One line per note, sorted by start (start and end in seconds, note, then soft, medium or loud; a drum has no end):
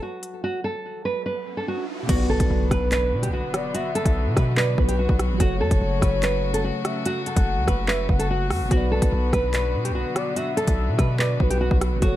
0.00 2.02 F#3 medium
0.00 2.04 F#4 medium
0.00 0.41 F#4 medium
0.00 2.06 A4 medium
0.00 2.08 C#5 medium
0.23 closed hi-hat medium
0.43 0.59 F#4 loud
0.43 riser medium
0.64 1.03 A4 medium
1.05 1.21 B4 medium
1.26 1.55 B4 medium
1.57 1.65 A4 medium
1.68 1.84 F#4 medium
2.03 4.71 B2 medium
2.03 4.73 B3 medium
2.09 2.39 B1 loud
2.09 5.37 D3 medium
2.09 11.98 F#3 medium
2.09 5.37 B3 medium
2.09 11.98 F#4 medium
2.09 2.25 F#4 loud
2.09 4.75 F#4 medium
2.09 3.50 B4 loud
2.09 kick loud
2.09 closed hi-hat medium
2.09 crash loud
2.09 impact medium
2.15 4.77 D5 medium
2.30 2.69 A4 medium
2.40 2.50 B1 loud
2.40 kick loud
2.40 closed hi-hat medium
2.50 2.70 B1 loud
2.71 3.14 B1 loud
2.71 2.87 B4 medium
2.71 kick medium
2.71 cross-stick medium
2.71 closed hi-hat medium
2.92 3.21 B4 medium
2.92 clap loud
2.92 closed hi-hat medium
3.13 3.30 B2 loud
3.23 3.31 G4 medium
3.23 closed hi-hat medium
3.28 3.43 B1 loud
3.33 3.72 F#4 medium
3.54 3.74 D5 medium
3.54 cross-stick loud
3.54 closed hi-hat medium
3.74 3.90 F#4 medium
3.74 4.53 E5 loud
3.74 closed hi-hat medium
3.95 4.34 A4 medium
3.95 closed hi-hat medium
4.06 4.28 B1 loud
4.06 kick loud
4.06 closed hi-hat medium
4.26 4.36 B2 loud
4.37 4.76 B2 loud
4.37 4.53 B4 medium
4.37 kick loud
4.37 cross-stick medium
4.37 closed hi-hat medium
4.57 4.86 B4 medium
4.57 4.77 D5 medium
4.57 clap loud
4.75 5.08 B1 loud
4.75 5.39 B2 medium
4.75 5.40 B3 medium
4.75 5.36 B4 medium
4.75 kick medium
4.79 5.37 F#4 soft
4.79 5.42 B4 medium
4.88 4.96 G4 medium
4.88 closed hi-hat medium
4.99 5.15 F#4 medium
5.09 5.31 B1 loud
5.09 kick loud
5.19 cross-stick loud
5.19 closed hi-hat medium
5.30 5.40 A1 loud
5.34 8.64 F#3 medium
5.38 5.62 F#1 loud
5.38 8.68 C#3 medium
5.38 8.68 A3 medium
5.38 8.66 F#4 medium
5.38 5.56 F#4 loud
5.38 8.68 A4 medium
5.38 6.81 C#5 loud
5.38 kick loud
5.38 closed hi-hat medium
5.46 8.70 C#5 medium
5.61 5.71 F#2 loud
5.61 6.00 A4 medium
5.71 5.81 F#1 loud
5.71 kick loud
5.71 closed hi-hat medium
5.81 6.01 F#1 loud
6.01 6.72 F#1 loud
6.01 6.17 B4 medium
6.01 kick loud
6.01 cross-stick medium
6.01 closed hi-hat medium
6.23 6.52 B4 medium
6.23 clap loud
6.23 closed hi-hat medium
6.54 6.62 A4 medium
6.54 closed hi-hat medium
6.64 7.03 F#4 medium
6.85 7.04 E5 medium
6.85 cross-stick loud
6.85 closed hi-hat medium
7.05 7.22 F#4 loud
7.05 7.84 F#5 loud
7.05 closed hi-hat medium
7.26 7.65 A4 medium
7.26 closed hi-hat medium
7.36 7.59 F#1 loud
7.36 kick loud
7.36 closed hi-hat medium
7.57 7.67 C#2 loud
7.67 8.07 F#1 loud
7.67 7.83 B4 medium
7.67 kick medium
7.67 cross-stick medium
7.67 closed hi-hat medium
7.88 8.17 B4 medium
7.88 8.08 E5 medium
7.88 clap loud
8.09 8.52 F#1 loud
8.09 8.67 F#5 medium
8.09 kick medium
8.19 8.27 A4 medium
8.19 closed hi-hat medium
8.31 8.46 F#4 medium
8.50 8.62 F#2 loud
8.50 cross-stick loud
8.50 open hi-hat medium
8.61 8.71 F#1 loud
8.65 11.33 B2 medium
8.65 11.35 B3 medium
8.71 9.01 B1 loud
8.71 11.99 D3 medium
8.71 11.99 B3 medium
8.71 8.87 F#4 loud
8.71 11.37 F#4 medium
8.71 10.12 B4 loud
8.71 kick loud
8.71 closed hi-hat medium
8.77 11.39 D5 medium
8.92 9.31 A4 medium
9.02 9.12 B1 loud
9.02 kick loud
9.02 closed hi-hat medium
9.12 9.32 B1 loud
9.33 9.76 B1 loud
9.33 9.49 B4 medium
9.33 kick loud
9.33 cross-stick medium
9.33 closed hi-hat medium
9.54 9.83 B4 medium
9.54 clap loud
9.54 closed hi-hat medium
9.74 9.92 B2 loud
9.85 9.93 G4 medium
9.85 closed hi-hat medium
9.90 10.05 B1 loud
9.95 10.34 F#4 medium
10.16 10.36 D5 loud
10.16 cross-stick loud
10.16 closed hi-hat medium
10.36 10.52 F#4 medium
10.36 11.15 E5 loud
10.36 closed hi-hat medium
10.57 10.96 A4 medium
10.57 closed hi-hat medium
10.67 10.90 B1 loud
10.67 kick loud
10.67 closed hi-hat medium
10.88 10.98 B2 loud
10.99 11.38 B2 loud
10.99 11.15 B4 medium
10.99 kick loud
10.99 cross-stick medium
10.99 closed hi-hat medium
11.19 11.48 B4 medium
11.19 11.39 D5 medium
11.19 clap loud
11.37 11.70 B1 loud
11.37 12.01 B2 medium
11.37 12.02 B3 medium
11.37 11.99 F#4 soft
11.37 11.98 B4 medium
11.37 kick medium
11.43 12.04 B4 medium
11.50 11.58 G4 medium
11.50 closed hi-hat medium
11.61 11.76 F#4 medium
11.71 11.93 B1 loud
11.71 kick loud
11.81 cross-stick loud
11.81 closed hi-hat medium
11.92 12.02 A1 loud
11.96 12.16 F#3 medium
11.96 12.16 F#4 medium
12.02 12.16 F#1 loud
12.02 12.16 C#3 medium
12.02 12.16 F#3 medium
12.02 12.16 A3 medium
12.02 12.16 F#4 loud
12.02 12.16 F#4 medium
12.02 12.16 A4 medium
12.02 12.16 C#5 loud
12.02 kick loud
12.02 closed hi-hat medium
12.08 12.16 C#5 medium